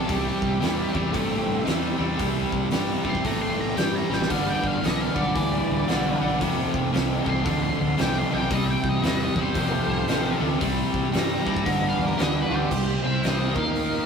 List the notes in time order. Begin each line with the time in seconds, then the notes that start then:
0.07 C2 C3 G3 E4 C5, kick, open hi-hat
0.14 G4
0.42 C2, kick
0.61 E2 C3 G3, snare, open hi-hat
0.93 E2 C3 G3, kick
1.13 G2 C3 A3, kick, open hi-hat
1.47 G2
1.65 E2 C3 G3, snare, open hi-hat
1.98 E2 C3 G3
2.17 C2 C3 G3, kick, open hi-hat
2.52 C2, kick
2.71 G2 C3 G3, snare, open hi-hat
3.04 G2 C3 G3, kick
3.09 C6
3.15 kick
3.24 A2 C3 A3 A#5, kick, open hi-hat
3.41 C6
3.57 A2 A#5
3.76 G2 C3 G3 G5, snare, open hi-hat
3.96 A#5
4.10 A1 C3 G3 G5, snare
4.22 snare
4.29 G1 G2 D3 G3 D4 B4 F5, kick, open hi-hat, crash
4.50 G5
4.64 G1 F5, kick
4.83 B1 G2 D3 D#5, snare, open hi-hat
5.02 F5
5.14 B1 G2 D3, kick
5.21 D5
5.35 D2 G2 E3, kick, open hi-hat
5.70 D2
5.87 B1 G2 D3, snare, open hi-hat
6.20 B1 G2 D3
6.38 F1 F2 A3 F4 C5, kick, open hi-hat
6.42 C3
6.74 F1, kick
6.93 C2 F2 C3, snare, open hi-hat
7.25 C2 F2 C3, kick
7.29 C6
7.43 D2 F2 D3, kick, open hi-hat
7.48 C6
7.63 C6
7.80 D2 C6
7.97 C2 F2 C3, snare, open hi-hat
8.01 G5
8.18 C6
8.31 B1 F2 C3
8.35 G5
8.49 C2 C3 G3 E4 C5 D#5, kick, open hi-hat
8.70 G5
8.84 C2, kick
8.89 D#5
9.02 E2 C3 G3 D#5, snare, open hi-hat
9.23 D#5
9.36 E2 C3 G3, kick
9.41 C5
9.55 F1 F2 C3 A#3 F#4 C#5, kick, open hi-hat
9.71 A3 F4 C5
9.87 C2
10.08 A1 F2 C3, snare, open hi-hat
10.39 D2 F2 C3
10.59 C2 C3 G3 E4 C5, kick, open hi-hat
10.94 C2, kick
11.13 G2 C3 G3, snare, open hi-hat
11.19 A#5
11.45 G2 C3 G3, kick
11.57 kick
11.66 G1 G2 D3 G#3 D#4 C5, kick, open hi-hat
11.83 G3 D4 B4
11.89 F5
11.98 E2
12.06 A#4
12.17 D2 G2 D3, snare, open hi-hat
12.23 D#5
12.42 B4
12.50 D2 G2 D3 G4
12.54 C5
12.71 C2 C3 G3 E4 C5, kick, crash
13.03 C2 C3 G3 C5 E5
13.22 C2 C3 G3 C4 C5 D#5, snare, open hi-hat
13.53 D#2 D#3 A#3 D#4 A#4 D#5, kick
13.57 D#4 F5
13.75 open hi-hat